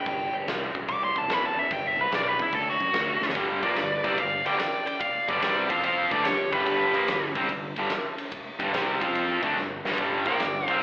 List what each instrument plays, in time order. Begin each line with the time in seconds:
Already playing: lead electric guitar G5
0.06 fingered electric bass G1, kick, crash
0.33 fingered electric bass G1
0.47 fingered electric bass C2, snare, crash
0.75 fingered electric bass B1, kick
0.88 fingered electric bass C2, lead electric guitar D6, kick, crash
1.04 lead electric guitar C6
1.15 fingered electric bass C2, lead electric guitar A5, kick
1.28 fingered electric bass E2, snare, crash
1.33 lead electric guitar B5
1.45 lead electric guitar A5
1.56 fingered electric bass E2, lead electric guitar E5
1.71 fingered electric bass G1, lead electric guitar G5, kick, crash
1.87 lead electric guitar E5
1.97 fingered electric bass C2, lead electric guitar B4
2.11 fingered electric bass B1, lead electric guitar D5, snare, crash
2.28 lead electric guitar B4
2.39 fingered electric bass E2, lead electric guitar E4, kick
2.52 fingered electric bass D2, lead electric guitar A4, kick, crash
2.70 lead electric guitar F#4
2.80 fingered electric bass F#2, kick
2.94 fingered electric bass D2, snare, crash
3.21 fingered electric bass D2, snare
3.29 snare
3.35 fingered electric bass G1, distorted electric guitar G2 D3 G3, kick, ride
3.63 fingered electric bass A#1, distorted electric guitar A#2 F3 A#3, lead electric guitar B4 D5, kick, ride
3.76 fingered electric bass G1, distorted electric guitar G2 D3, snare, ride
4.04 fingered electric bass C2, distorted electric guitar C3 G3 C4, lead electric guitar B4 D5, kick, ride
4.18 fingered electric bass G1, distorted electric guitar G2 D3, lead electric guitar D5 F5, kick, ride
4.46 fingered electric bass G1, distorted electric guitar G2 D3 G3, lead electric guitar D5 G5, ride
4.59 lead electric guitar D5 G5, snare, ride
4.86 lead electric guitar D5 G5, ride
5.01 lead electric guitar D5 F5, kick, ride
5.28 fingered electric bass G1, distorted electric guitar G2 D3 G3, lead electric guitar B4 D5, kick, ride
5.41 fingered electric bass C2, distorted electric guitar C3 G3 C4, lead electric guitar B4 D5, snare, ride
5.68 fingered electric bass F2, distorted electric guitar F3 C4 F4, lead electric guitar C5 F5, kick, ride
5.82 lead electric guitar C5 F5, ride
6.11 fingered electric bass D2, distorted electric guitar D3 A3 D4, lead electric guitar B4 D5, kick, ride
6.24 fingered electric bass G1, distorted electric guitar G2 D3, lead electric guitar G4 C#5, snare, ride
6.52 fingered electric bass G1, distorted electric guitar G2 D3 G3, lead electric guitar G4 B4, kick, ride
6.66 fingered electric bass G1, distorted electric guitar G2 D3 G3, kick, ride
6.93 fingered electric bass A#1, distorted electric guitar A#2 F3 A#3, ride
7.08 fingered electric bass G1, distorted electric guitar G2 D3, snare, ride
7.35 fingered electric bass C2, distorted electric guitar C3 G3 C4, kick, ride
7.49 fingered electric bass G1, distorted electric guitar G2 D3, kick, ride
7.76 fingered electric bass G1, distorted electric guitar G2 D3 G3, ride
7.90 snare, ride
8.18 ride
8.32 kick, ride
8.59 fingered electric bass G1, distorted electric guitar G2 D3 G3, kick, ride
8.73 fingered electric bass C2, distorted electric guitar C3 G3 C4, snare, ride
9.01 fingered electric bass F2, distorted electric guitar F3 C4 F4, kick, ride
9.15 ride
9.43 fingered electric bass D2, distorted electric guitar D3 A3 D4, kick, ride
9.57 fingered electric bass G1, distorted electric guitar G2 D3, snare
9.85 fingered electric bass G1, distorted electric guitar G2 D3 G3, snare
9.92 snare
9.98 fingered electric bass G1, distorted electric guitar G2 D3 G3, kick, ride
10.26 fingered electric bass A#1, distorted electric guitar A#2 F3 A#3, lead electric guitar D5 G5, kick, ride
10.40 fingered electric bass G1, distorted electric guitar G2 D3, snare, ride
10.66 fingered electric bass C2, distorted electric guitar C3 G3, lead electric guitar C5 F5, kick, ride
10.70 distorted electric guitar C4